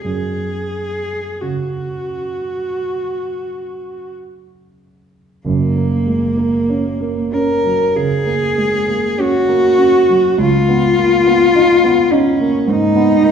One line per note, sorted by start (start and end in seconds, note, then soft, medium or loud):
0.04 5.42 F#2 soft
0.04 1.43 G#4 medium
1.41 5.46 C#3 soft
1.41 4.11 F#4 soft
5.45 7.91 F#1 medium
5.45 7.92 F#2 medium
5.45 7.35 A#3 medium
5.76 6.26 A#3 soft
6.07 6.38 G#3 soft
6.37 6.88 A#3 soft
6.69 7.20 C#4 soft
7.01 7.52 A#3 soft
7.33 7.84 C#4 medium
7.33 7.98 A#4 medium
7.65 8.15 F#3 soft
7.96 8.46 C#3 soft
7.96 9.22 G#4 medium
8.26 8.76 A#3 soft
8.58 8.89 G#3 soft
8.88 9.37 A#3 soft
9.18 9.67 C#4 medium
9.18 10.40 F#4 medium
9.48 9.97 A#3 medium
9.78 10.26 C#4 medium
10.09 10.39 F#3 soft
10.38 12.64 C#2 medium
10.38 12.15 F4 loud
10.69 11.16 B3 medium
10.97 11.27 A#3 soft
11.26 11.73 B3 medium
11.55 12.01 D#4 medium
11.84 12.29 B3 medium
12.12 12.71 C#4 medium
12.12 12.57 D#4 medium
12.40 12.85 A#3 medium
12.67 13.12 G#2 medium
12.67 13.31 D#4 loud
12.96 13.31 B3 medium
13.24 13.31 A#3 soft